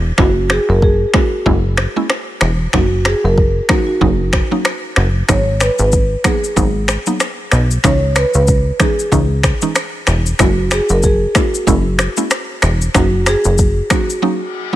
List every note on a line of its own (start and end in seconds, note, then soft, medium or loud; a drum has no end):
0.00 0.12 E1 medium
0.18 0.59 F#1 loud
0.18 1.07 G#3 medium
0.18 1.08 A#3 medium
0.18 1.08 C#4 medium
0.18 1.08 E4 loud
0.18 0.49 F#4 medium
0.18 finger snap medium
0.18 kick loud
0.18 cross-stick medium
0.50 0.70 G#4 medium
0.50 finger snap medium
0.50 cross-stick medium
0.69 1.06 F#1 medium
0.69 0.83 A#4 loud
0.82 1.16 G#4 medium
0.82 kick loud
1.14 1.44 G#3 medium
1.14 1.44 A#3 medium
1.14 1.44 C#4 medium
1.14 1.44 E4 medium
1.14 2.38 F#4 medium
1.14 finger snap medium
1.14 kick medium
1.14 cross-stick medium
1.46 1.87 F#1 loud
1.46 1.63 G#3 medium
1.46 1.63 A#3 medium
1.46 1.63 C#4 medium
1.46 1.63 E4 loud
1.46 kick medium
1.77 finger snap medium
1.77 cross-stick medium
1.96 2.08 G#3 medium
1.96 2.08 A#3 medium
1.96 2.09 C#4 medium
1.96 2.09 E4 medium
2.10 finger snap medium
2.10 cross-stick medium
2.41 2.68 E1 medium
2.41 finger snap medium
2.41 cross-stick medium
2.73 3.15 F#1 loud
2.73 3.63 F#3 medium
2.73 3.63 A#3 medium
2.73 3.63 C#4 medium
2.73 3.63 D#4 loud
2.73 2.89 F#4 medium
2.73 finger snap medium
2.73 kick loud
2.73 cross-stick medium
3.05 3.23 G#4 medium
3.05 finger snap medium
3.05 cross-stick medium
3.24 3.61 F#1 loud
3.24 3.71 A#4 loud
3.38 kick medium
3.69 3.99 F#3 medium
3.69 3.99 A#3 medium
3.69 3.99 C#4 medium
3.69 3.99 D#4 medium
3.69 3.78 F#4 medium
3.69 finger snap medium
3.69 kick medium
3.69 cross-stick loud
3.79 3.86 D#4 medium
3.87 4.94 F#4 medium
4.01 4.42 F#1 loud
4.01 4.18 F#3 loud
4.01 4.18 A#3 medium
4.01 4.18 C#4 medium
4.01 4.18 D#4 loud
4.01 kick medium
4.33 finger snap medium
4.33 kick medium
4.33 cross-stick medium
4.51 4.64 F#3 medium
4.51 4.64 A#3 medium
4.51 4.64 C#4 medium
4.51 4.64 D#4 medium
4.65 finger snap medium
4.65 cross-stick medium
4.96 5.23 F#1 loud
4.96 finger snap medium
4.96 cross-stick medium
5.29 5.70 G#1 loud
5.29 6.18 F#3 medium
5.29 6.18 G#3 medium
5.29 6.18 B3 medium
5.29 6.18 D#4 loud
5.29 5.62 C#5 loud
5.29 finger snap medium
5.29 kick loud
5.29 cross-stick medium
5.29 shaker medium
5.60 5.70 B4 medium
5.60 finger snap medium
5.60 cross-stick medium
5.60 shaker medium
5.79 6.16 G#1 medium
5.79 6.27 B4 medium
5.79 shaker medium
5.92 kick loud
5.92 shaker medium
6.24 6.54 F#3 medium
6.24 6.54 A#3 medium
6.24 6.55 B3 medium
6.24 6.55 D#4 medium
6.24 6.85 G#4 medium
6.24 finger snap medium
6.24 kick medium
6.24 cross-stick loud
6.24 shaker medium
6.44 shaker medium
6.56 6.98 G#1 loud
6.56 6.73 F#3 medium
6.56 6.73 A#3 medium
6.56 6.73 B3 medium
6.56 6.73 D#4 loud
6.56 kick medium
6.56 shaker medium
6.88 finger snap medium
6.88 cross-stick medium
6.88 shaker soft
7.06 7.19 F#3 medium
7.06 7.19 A#3 medium
7.06 7.19 B3 medium
7.06 7.19 D#4 medium
7.06 shaker medium
7.20 finger snap medium
7.20 cross-stick medium
7.20 shaker medium
7.51 7.78 B1 loud
7.51 finger snap medium
7.51 cross-stick medium
7.51 shaker soft
7.71 shaker medium
7.84 8.25 C#2 loud
7.84 8.73 E3 medium
7.84 8.74 G#3 medium
7.84 8.74 C#4 medium
7.84 8.74 D#4 loud
7.84 8.00 C#5 loud
7.84 finger snap medium
7.84 kick loud
7.84 cross-stick medium
7.84 shaker medium
8.16 8.35 B4 loud
8.16 finger snap medium
8.16 cross-stick medium
8.16 shaker medium
8.34 8.72 C#2 loud
8.34 8.78 B4 loud
8.34 shaker medium
8.47 kick loud
8.47 shaker medium
8.80 9.10 E3 medium
8.80 9.10 G#3 medium
8.80 9.10 C#4 medium
8.80 9.10 D#4 medium
8.80 9.41 G#4 medium
8.80 finger snap medium
8.80 kick medium
8.80 cross-stick medium
8.80 shaker medium
8.99 shaker medium
9.12 9.53 C#2 loud
9.12 9.28 E3 medium
9.12 9.29 G#3 medium
9.12 9.29 C#4 medium
9.12 9.29 D#4 loud
9.12 kick medium
9.12 shaker medium
9.43 finger snap medium
9.43 kick medium
9.43 cross-stick medium
9.43 shaker soft
9.62 9.74 E3 medium
9.62 9.74 G#3 medium
9.62 9.75 C#4 medium
9.62 9.75 D#4 medium
9.62 shaker medium
9.75 finger snap medium
9.75 cross-stick medium
9.75 shaker medium
10.07 10.34 E1 medium
10.07 finger snap medium
10.07 cross-stick medium
10.07 shaker soft
10.26 shaker medium
10.39 10.81 F#1 loud
10.39 11.29 G#3 medium
10.39 11.29 A#3 medium
10.39 11.29 C#4 medium
10.39 11.29 E4 loud
10.39 10.73 F#4 medium
10.39 finger snap medium
10.39 kick loud
10.39 cross-stick loud
10.39 shaker medium
10.71 10.91 G#4 medium
10.71 finger snap medium
10.71 cross-stick medium
10.71 shaker medium
10.89 11.27 F#1 medium
10.89 11.03 A#4 loud
10.89 shaker medium
11.03 11.37 G#4 medium
11.03 kick loud
11.03 shaker medium
11.35 11.65 G#3 medium
11.35 11.65 A#3 medium
11.35 11.65 C#4 medium
11.35 11.65 E4 medium
11.35 12.60 F#4 medium
11.35 finger snap medium
11.35 kick medium
11.35 cross-stick loud
11.35 shaker medium
11.54 shaker medium
11.67 12.08 F#1 loud
11.67 11.84 G#3 medium
11.67 11.84 A#3 medium
11.67 11.84 C#4 medium
11.67 11.84 E4 loud
11.67 kick medium
11.67 shaker medium
11.99 finger snap medium
11.99 cross-stick medium
11.99 shaker soft
12.17 12.30 G#3 medium
12.17 12.30 A#3 medium
12.17 12.30 C#4 medium
12.17 12.30 E4 medium
12.17 shaker medium
12.31 finger snap medium
12.31 cross-stick loud
12.31 shaker medium
12.62 12.89 E1 medium
12.62 finger snap medium
12.62 cross-stick medium
12.62 shaker soft
12.81 shaker medium
12.94 13.36 F#1 loud
12.94 13.84 F#3 medium
12.94 13.84 A#3 medium
12.94 13.84 C#4 medium
12.94 13.84 D#4 loud
12.94 13.28 F#4 medium
12.94 finger snap medium
12.94 kick loud
12.94 cross-stick loud
12.94 shaker medium
13.26 13.93 G#4 loud
13.26 finger snap medium
13.26 cross-stick medium
13.26 shaker medium
13.44 13.82 F#1 medium
13.44 shaker medium
13.58 kick loud
13.58 shaker medium
13.90 14.20 F#3 medium
13.90 14.20 A#3 medium
13.90 14.20 C#4 medium
13.90 14.21 D#4 medium
13.90 14.76 F#4 medium
13.90 finger snap medium
13.90 kick medium
13.90 cross-stick loud
13.90 shaker medium
14.10 shaker medium
14.22 14.39 F#3 medium
14.22 14.39 A#3 medium
14.22 14.39 C#4 medium
14.22 14.39 D#4 loud
14.22 reverse cymbal medium
14.73 14.76 F#3 medium